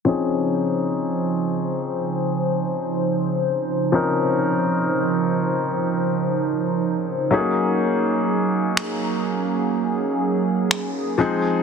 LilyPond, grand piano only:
\new Staff \with { instrumentName = "Grand piano" } { \time 4/4 \key des \major \tempo 4 = 62 <f c' des' ees' aes'>1 | <f c' des' ees' bes'>2.~ <f c' des' ees' bes'>8 <ges a bes des' ees' aes'>8~ | <ges a bes des' ees' aes'>2.~ <ges a bes des' ees' aes'>8 <f aes c' ees' aes'>8 | }